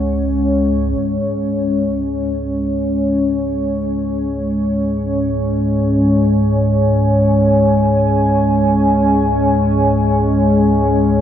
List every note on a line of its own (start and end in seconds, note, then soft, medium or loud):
0.00 0.96 C#2 medium
0.00 0.97 G#2 medium
0.00 11.21 G#3 medium
0.00 11.21 C#4 medium
0.00 11.21 C#5 medium
0.00 0.98 F#5 medium
0.97 11.21 C#2 medium
0.97 11.21 G#2 medium
5.18 11.21 G#5 medium